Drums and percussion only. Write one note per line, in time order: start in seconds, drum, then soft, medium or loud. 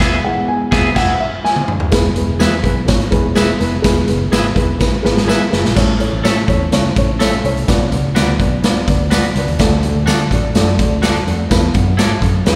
0.00 kick loud
0.00 snare loud
0.00 crash medium
0.72 kick loud
0.72 snare loud
0.96 kick loud
0.96 snare loud
0.96 crash medium
1.45 snare medium
1.56 high tom medium
1.68 mid tom medium
1.80 floor tom medium
1.92 kick loud
1.92 snare loud
1.92 closed hi-hat loud
1.92 tambourine medium
2.16 closed hi-hat medium
2.40 snare loud
2.40 closed hi-hat medium
2.40 tambourine medium
2.64 kick medium
2.64 closed hi-hat medium
2.88 kick loud
2.88 snare loud
2.88 closed hi-hat loud
2.88 tambourine medium
3.00 closed hi-hat soft
3.12 kick loud
3.12 closed hi-hat medium
3.35 snare loud
3.35 closed hi-hat medium
3.35 tambourine medium
3.60 snare soft
3.60 closed hi-hat medium
3.84 kick loud
3.84 snare loud
3.84 closed hi-hat loud
3.84 tambourine medium
4.08 closed hi-hat medium
4.32 snare loud
4.32 closed hi-hat medium
4.32 tambourine medium
4.56 kick medium
4.56 closed hi-hat medium
4.81 kick loud
4.81 snare medium
4.81 tambourine medium
5.05 snare medium
5.17 snare medium
5.29 snare medium
5.29 tambourine loud
5.53 snare loud
5.65 snare loud
5.76 kick loud
5.76 snare loud
5.76 crash loud
5.76 tambourine medium
6.00 closed hi-hat medium
6.25 snare loud
6.25 closed hi-hat medium
6.25 tambourine loud
6.48 kick medium
6.48 closed hi-hat medium
6.72 snare loud
6.72 closed hi-hat loud
6.72 tambourine medium
6.96 kick loud
6.96 closed hi-hat medium
7.20 snare loud
7.20 closed hi-hat medium
7.20 tambourine medium
7.33 closed hi-hat medium
7.45 closed hi-hat medium
7.57 closed hi-hat medium
7.68 kick loud
7.68 snare loud
7.68 closed hi-hat loud
7.68 tambourine medium
7.92 closed hi-hat medium
8.16 snare loud
8.16 closed hi-hat medium
8.16 tambourine medium
8.40 kick medium
8.40 closed hi-hat medium
8.64 snare loud
8.64 closed hi-hat loud
8.64 tambourine medium
8.88 kick loud
8.88 closed hi-hat medium
9.11 snare loud
9.11 closed hi-hat medium
9.11 tambourine loud
9.23 closed hi-hat medium
9.35 snare soft
9.35 closed hi-hat medium
9.48 closed hi-hat medium
9.59 kick loud
9.59 snare loud
9.59 closed hi-hat loud
9.59 tambourine medium
9.83 closed hi-hat medium
10.07 snare loud
10.07 closed hi-hat medium
10.07 tambourine loud
10.31 kick medium
10.31 closed hi-hat medium
10.55 snare loud
10.55 closed hi-hat loud
10.55 tambourine medium
10.79 kick loud
10.79 closed hi-hat medium
11.03 snare loud
11.03 closed hi-hat medium
11.03 tambourine medium
11.15 closed hi-hat medium
11.28 closed hi-hat medium
11.51 kick loud
11.51 snare loud
11.51 closed hi-hat loud
11.51 tambourine medium
11.74 kick loud
11.74 closed hi-hat medium
11.99 snare loud
11.99 closed hi-hat medium
11.99 tambourine loud
12.22 kick medium
12.22 closed hi-hat medium
12.46 snare loud
12.46 closed hi-hat loud
12.46 tambourine medium